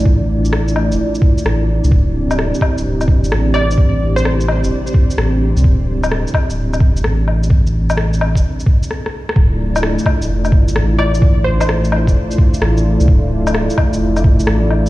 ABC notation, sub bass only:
X:1
M:4/4
L:1/16
Q:"Swing 16ths" 1/4=129
K:Dm
V:1 name="Sub bass" clef=bass
A,,,6- A,,, D,,, z4 A,,,3 C,, | D,,,4- D,,, z2 D,,, D,,,3 A,,,4- A,,,- | A,,,6- A,,, D,,, z4 A,,,3 C,, | D,,,4- D,,, z2 D,,, D,,,3 A,,,4- A,,,- |
A,,,6- A,,, D,,, z8 | D,,,4- D,,, z2 D,,, F,,,3 A,,,4- A,,,- | A,,,6- A,,, D,,, z4 A,,,3 C,, | D,,,4- D,,, z2 D,,, F,,,3 A,,,4- A,,, |]